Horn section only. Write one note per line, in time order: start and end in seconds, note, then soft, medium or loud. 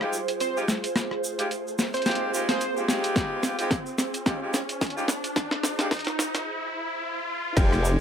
0.01 0.19 G#3 medium
0.01 0.19 D#4 medium
0.01 0.19 F4 medium
0.01 0.19 G4 medium
0.56 0.67 G#3 medium
0.56 0.67 D#4 medium
0.56 0.67 F4 medium
0.56 0.67 G4 loud
1.39 1.49 G#3 medium
1.39 1.49 D#4 medium
1.39 1.49 F4 medium
1.39 1.49 G4 medium
2.06 2.31 G#3 medium
2.06 2.31 D#4 medium
2.06 2.31 F4 medium
2.06 2.31 G4 loud
2.34 2.47 G#3 medium
2.34 2.47 D#4 medium
2.34 2.47 F4 medium
2.34 2.47 G4 loud
2.49 2.67 G#3 medium
2.49 2.67 D#4 medium
2.49 2.67 F4 medium
2.49 2.67 G#4 medium
2.77 2.87 G#3 medium
2.77 2.87 D#4 medium
2.77 2.87 F4 medium
2.77 2.87 G4 medium
2.89 3.56 G#3 loud
2.89 3.56 D#4 medium
2.89 3.56 F4 medium
2.89 3.56 G4 loud
3.59 3.77 G#3 medium
3.59 3.77 D#4 medium
3.59 3.77 F4 medium
3.59 3.77 G4 loud
4.26 4.40 G#3 medium
4.26 4.40 D#4 medium
4.26 4.39 F4 medium
4.26 4.39 G4 medium
4.42 4.59 G#3 medium
4.42 4.59 D#4 medium
4.42 4.59 F4 medium
4.42 4.59 G4 medium
4.97 5.07 G#3 medium
4.97 5.07 D#4 medium
4.97 5.07 F4 medium
4.97 5.07 G4 loud
5.80 5.90 G#3 medium
5.80 5.90 D#4 medium
5.80 5.90 F4 medium
5.80 5.90 G4 loud
7.57 7.94 G#3 loud
7.57 7.93 D#4 medium
7.57 7.93 F4 medium
7.57 7.94 G4 loud